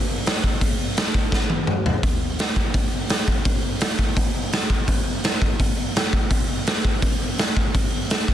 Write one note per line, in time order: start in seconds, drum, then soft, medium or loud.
0.26 snare loud
0.26 open hi-hat medium
0.44 kick medium
0.61 kick loud
0.61 open hi-hat medium
0.97 snare loud
0.97 open hi-hat medium
1.14 kick medium
1.32 kick loud
1.32 snare medium
1.50 high tom medium
1.67 mid tom medium
1.86 floor tom medium
2.03 kick loud
2.03 open hi-hat soft
2.39 snare loud
2.39 open hi-hat medium
2.56 kick medium
2.74 kick loud
2.74 open hi-hat soft
3.09 snare loud
3.09 open hi-hat medium
3.28 kick medium
3.45 kick loud
3.45 open hi-hat medium
3.81 snare loud
3.81 open hi-hat medium
3.99 kick medium
4.17 kick loud
4.17 open hi-hat soft
4.52 snare loud
4.52 open hi-hat medium
4.70 kick medium
4.88 kick loud
4.88 open hi-hat medium
5.24 snare loud
5.24 open hi-hat medium
5.42 kick medium
5.60 kick loud
5.60 open hi-hat soft
5.96 snare loud
5.96 open hi-hat soft
6.13 kick medium
6.30 kick loud
6.30 open hi-hat medium
6.67 snare loud
6.67 open hi-hat medium
6.85 kick medium
7.02 kick loud
7.02 open hi-hat medium
7.38 snare loud
7.38 open hi-hat medium
7.57 kick medium
7.75 kick loud
7.75 open hi-hat medium
8.10 snare loud
8.10 open hi-hat medium
8.28 kick medium